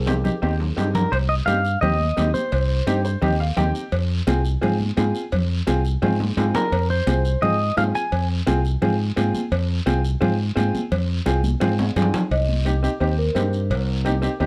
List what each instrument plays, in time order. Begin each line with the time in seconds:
Already playing: fingered electric bass C2, marimba C5
0.06 upright piano C4 D#4 G4, low conga, high timbale, short guiro
0.24 upright piano C4 D#4 G4, low conga, short guiro
0.42 fingered electric bass D#2, upright piano C4 D#4 G4, high timbale, long guiro
0.60 low timbale
0.77 fingered electric bass G2, upright piano C4 D#4 G4, low timbale, short guiro
0.95 clean electric guitar A#4, low conga, low timbale, short guiro
1.12 fingered electric bass C2, clean electric guitar C5, cowbell, high conga, long guiro
1.29 clean electric guitar D#5
1.46 fingered electric bass G2, upright piano C4 D#4 G4, clean electric guitar F5, cowbell, high conga, short guiro
1.65 short guiro
1.81 fingered electric bass D#2, upright piano C4 D#4 G4, clean electric guitar D#5, cowbell, high conga, low conga, long guiro
2.00 high conga
2.17 fingered electric bass D#2, upright piano C4 D#4 G4, cowbell, high conga, low timbale, short guiro
2.34 clean electric guitar C5, high conga, short guiro
2.52 fingered electric bass C2, cowbell, high conga, long guiro
2.87 fingered electric bass G2, upright piano C4 D#4 G4, cowbell, high conga, short guiro
3.05 upright piano C5, short guiro
3.22 fingered electric bass D#2, upright piano C4 D#4 G4 D#5, cowbell, high conga, low conga, long guiro
3.40 upright piano F5
3.57 fingered electric bass D#2, upright piano C4 D#4 G4 G5, cowbell, high conga, low conga, low timbale, short guiro
3.75 short guiro
3.92 fingered electric bass F2, cowbell, high conga, long guiro
4.27 fingered electric bass C2, upright piano C4 F4 G#4, cowbell, high conga, short guiro
4.45 short guiro
4.61 fingered electric bass G#2, upright piano C4 F4 G#4, cowbell, high conga, low conga, long guiro
4.80 high conga
4.97 fingered electric bass G#2, upright piano C4 F4 G#4, cowbell, high conga, low timbale, short guiro
5.15 short guiro
5.32 fingered electric bass F2, cowbell, high conga, low conga, long guiro
5.67 fingered electric bass C2, upright piano C4 F4 G#4, cowbell, high conga, short guiro
5.85 short guiro
6.02 fingered electric bass G#2, upright piano C4 F4 G#4, cowbell, high conga, low conga, high timbale, long guiro
6.20 high conga, low timbale
6.37 fingered electric bass G#2, upright piano C4 F4 G#4, cowbell, high conga, low timbale, short guiro
6.55 clean electric guitar A#4, high conga, low timbale, short guiro
6.72 fingered electric bass F2, cowbell, high conga, long guiro
6.90 clean electric guitar C5
7.07 fingered electric bass C2, upright piano C4 F4 G#4, cowbell, high conga, short guiro
7.25 short guiro
7.42 fingered electric bass G#2, upright piano C4 F4 G#4, clean electric guitar D#5, cowbell, high conga, low conga, long guiro
7.77 fingered electric bass G#2, upright piano C4 F4 G#4, clean electric guitar F5, cowbell, high conga, low timbale, short guiro
7.95 clean electric guitar G#5, short guiro
8.12 fingered electric bass F2, cowbell, high conga, long guiro
8.47 fingered electric bass C2, upright piano C4 F4 G#4, cowbell, high conga, short guiro
8.65 short guiro
8.82 fingered electric bass G#2, upright piano C4 F4 G#4, cowbell, high conga, low conga, long guiro
9.16 fingered electric bass G#2, upright piano C4 F4 G#4, cowbell, high conga, short guiro
9.34 high conga, short guiro
9.52 fingered electric bass F2, cowbell, high conga, long guiro
9.86 fingered electric bass C2, upright piano C4 F4 G#4, cowbell, high conga, short guiro
10.04 short guiro
10.21 fingered electric bass G#2, upright piano C4 F4 G#4, cowbell, high conga, low conga, long guiro
10.56 fingered electric bass G#2, upright piano C4 F4 G#4, cowbell, high conga, short guiro
10.75 high conga, short guiro
10.92 fingered electric bass F2, cowbell, high conga, low conga, long guiro
11.26 fingered electric bass C2, upright piano C4 F4 G#4, cowbell, high conga, short guiro
11.44 high conga, short guiro
11.60 fingered electric bass G#2, upright piano C4 F4 G#4, cowbell, low conga, long guiro
11.79 high conga, high timbale
11.96 fingered electric bass G2, upright piano C4 F4 G#4, cowbell, low conga, short guiro
12.02 low timbale
12.14 low conga, low timbale, short guiro
12.31 fingered electric bass C2, marimba D#5, cowbell, long guiro
12.49 high conga
12.65 upright piano C4 D#4 G4, cowbell, high conga, short guiro
12.83 upright piano C4 D#4 G4, short guiro
13.00 fingered electric bass D#2, upright piano C4 D#4 G4, marimba C5, cowbell, long guiro
13.18 marimba A#4
13.35 fingered electric bass G2, upright piano C4 D#4 G4, marimba C5, cowbell, high conga, low timbale, short guiro
13.53 short guiro
13.70 fingered electric bass C2, cowbell, long guiro
14.05 upright piano C4 D#4 G4, cowbell, high conga, short guiro
14.22 upright piano C4 D#4 G4, short guiro
14.40 fingered electric bass D#2, upright piano C4 D#4 G4, cowbell, long guiro